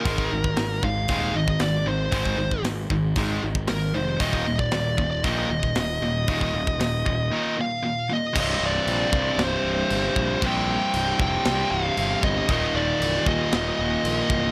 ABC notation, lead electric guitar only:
X:1
M:4/4
L:1/16
Q:1/4=116
K:Cm
V:1 name="Lead electric guitar"
B6 f4 e2 d2 c2- | c4 z8 B2 c2 | e3 d4 d e8- | e8- e2 f4 e2 |
e2 d6 c8 | g6 g4 f4 e2 | e2 d4 e2 e8 |]